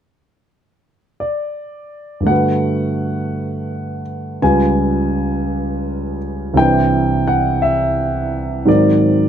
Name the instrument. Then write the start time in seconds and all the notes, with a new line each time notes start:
grand piano
1.20 D5
2.20 G2 D3
2.26 A3 F#4 F#5
2.31 B4
4.42 C#2 C#3 G3 F4 B4 G#5
6.54 C2 C3 E3 G5
6.58 D4 B4
7.28 F#5
7.62 E5
8.65 G#2 D#3 F#3 C4 A#4 D5